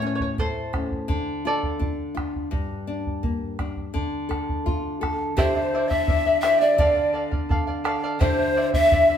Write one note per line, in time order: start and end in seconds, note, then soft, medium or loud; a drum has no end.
0.00 1.05 A2 medium
0.00 0.37 C#4 medium
0.07 0.13 C#5 soft
0.15 0.21 C#5 medium
0.20 0.28 C#5 medium
0.20 bombo low soft
0.38 0.73 A3 soft
0.38 1.42 A4 medium
0.38 1.42 C5 medium
0.38 bombo low medium
0.73 1.08 C#4 soft
0.73 bombo rim medium
0.73 bombo low medium
0.92 bombo low soft
1.08 2.48 D3 medium
1.08 bombo low medium
1.45 1.80 F4 medium
1.45 2.13 A4 medium
1.45 2.13 D5 medium
1.63 bombo low medium
1.79 2.15 D4 soft
1.79 bombo low medium
2.15 2.50 F4 soft
2.15 bombo rim soft
2.15 bombo low soft
2.36 bombo low soft
2.51 3.90 G2 medium
2.51 bombo low medium
2.87 3.22 D4 soft
3.07 bombo low soft
3.23 3.58 A#3 soft
3.23 bombo low medium
3.59 3.94 D4 soft
3.59 bombo rim soft
3.59 bombo low soft
3.77 bombo low soft
3.94 5.33 D3 medium
3.94 bombo low medium
4.29 4.64 A4 soft
4.29 bombo rim soft
4.29 bombo low soft
4.49 bombo low medium
4.66 5.01 F4 soft
4.66 bombo low medium
5.01 5.36 A4 soft
5.01 bombo rim medium
5.01 bombo low soft
5.37 6.75 D3 medium
5.37 5.55 E4 medium
5.37 5.55 G4 medium
5.37 5.90 C5 medium
5.37 5.90 C5 loud
5.37 5.56 C5 medium
5.37 5.55 D5 medium
5.37 5.54 E5 medium
5.37 bombo low medium
5.56 5.73 E4 soft
5.56 5.73 D5 soft
5.56 5.73 E5 soft
5.74 5.91 E4 medium
5.74 5.91 C5 medium
5.74 5.90 D5 medium
5.74 5.89 E5 medium
5.88 6.07 E4 medium
5.88 6.08 D5 medium
5.88 6.40 E5 loud
5.88 6.41 E5 loud
5.88 6.08 E5 medium
5.88 bombo low medium
6.08 6.26 E4 medium
6.08 6.26 C5 medium
6.08 6.26 D5 medium
6.08 6.25 E5 medium
6.08 bombo low medium
6.26 6.42 E4 soft
6.26 6.43 D5 medium
6.26 6.43 E5 medium
6.41 6.61 E4 loud
6.41 6.61 G4 medium
6.41 6.61 C5 medium
6.41 6.60 D5 loud
6.41 6.62 E5 loud
6.41 6.60 E5 medium
6.41 6.60 E5 loud
6.41 bombo rim medium
6.59 6.78 E4 medium
6.59 6.80 G4 medium
6.59 6.79 C5 medium
6.59 7.31 D5 medium
6.59 7.32 D5 medium
6.59 6.78 D5 medium
6.59 6.79 E5 medium
6.78 8.17 D3 medium
6.78 6.97 A4 medium
6.78 6.96 D5 medium
6.78 6.94 F5 loud
6.78 bombo low medium
6.96 7.13 D5 soft
6.96 7.14 F5 medium
7.13 7.32 A4 medium
7.13 7.32 D5 medium
7.13 7.30 F5 medium
7.31 7.49 D5 soft
7.31 7.50 F5 medium
7.31 bombo low medium
7.49 7.67 A4 medium
7.49 7.67 D5 medium
7.49 7.66 F5 medium
7.49 bombo low medium
7.67 7.84 D5 medium
7.67 7.84 F5 medium
7.84 8.03 A4 loud
7.84 8.02 D5 loud
7.84 8.02 F5 loud
7.84 bombo rim medium
8.04 8.21 A4 medium
8.04 8.20 D5 medium
8.04 8.20 F5 medium
8.20 9.18 D3 medium
8.20 8.38 E4 medium
8.20 8.38 G4 medium
8.20 8.70 C5 loud
8.20 8.70 C5 medium
8.20 8.39 C5 medium
8.20 8.38 D5 medium
8.20 8.37 E5 loud
8.20 bombo low medium
8.39 8.56 E4 soft
8.39 8.56 D5 soft
8.39 8.56 E5 medium
8.56 8.73 E4 medium
8.56 8.74 C5 medium
8.56 8.73 D5 medium
8.56 8.72 E5 medium
8.73 8.91 E4 soft
8.73 8.91 D5 soft
8.73 8.91 E5 medium
8.73 9.18 E5 loud
8.73 bombo low medium
8.92 9.10 E4 medium
8.92 9.09 C5 medium
8.92 9.09 D5 medium
8.92 9.08 E5 medium
8.92 bombo low medium
9.09 9.18 E4 soft
9.09 9.18 D5 medium
9.09 9.18 E5 medium